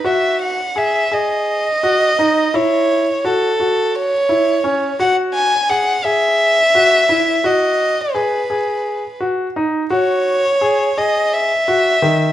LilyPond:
<<
  \new Staff \with { instrumentName = "Violin" } { \time 7/8 \key gis \phrygian \tempo 4 = 85 e''8 fis''8 e''8 dis''2 | cis''4 a'4 cis''4. | fis''8 gis''8 fis''8 e''2 | dis''4 b'4. r4 |
cis''4. dis''8 e''4. | }
  \new Staff \with { instrumentName = "Grand piano" } { \time 7/8 \key gis \phrygian fis'4 gis'8 gis'4 fis'8 dis'8 | e'4 fis'8 fis'4 e'8 cis'8 | fis'4 gis'8 gis'4 fis'8 e'8 | fis'4 gis'8 gis'4 fis'8 dis'8 |
fis'4 gis'8 gis'4 fis'8 dis8 | }
>>